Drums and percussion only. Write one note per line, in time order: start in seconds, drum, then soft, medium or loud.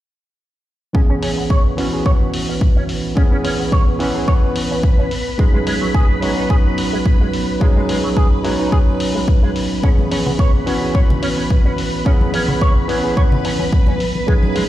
0.95 kick loud
1.23 open hi-hat medium
1.50 kick loud
1.78 open hi-hat medium
2.06 kick loud
2.34 open hi-hat medium
2.61 kick loud
2.89 open hi-hat medium
3.17 kick loud
3.45 open hi-hat loud
3.72 kick loud
4.00 open hi-hat medium
4.28 kick loud
4.56 open hi-hat loud
4.83 kick loud
5.11 open hi-hat medium
5.39 kick loud
5.67 open hi-hat loud
5.95 kick loud
6.22 open hi-hat medium
6.50 kick loud
6.78 open hi-hat loud
7.06 kick loud
7.34 open hi-hat medium
7.61 kick loud
7.89 open hi-hat medium
8.17 kick loud
8.45 open hi-hat medium
8.72 kick loud
9.00 open hi-hat medium
9.28 kick loud
9.56 open hi-hat medium
9.83 kick loud
9.98 high conga medium
10.12 open hi-hat medium
10.27 low conga medium
10.39 kick loud
10.67 open hi-hat medium
10.95 kick loud
11.10 low conga medium
11.23 open hi-hat medium
11.50 kick loud
11.78 open hi-hat medium
12.06 kick loud
12.21 high conga medium
12.34 open hi-hat medium
12.48 low conga medium
12.62 kick loud
12.89 open hi-hat medium
13.17 kick loud
13.32 low conga medium
13.45 open hi-hat medium
13.59 high conga medium
13.73 kick loud
13.87 high conga medium
14.00 open hi-hat medium
14.15 high conga medium
14.28 kick loud
14.43 high conga medium
14.56 open hi-hat medium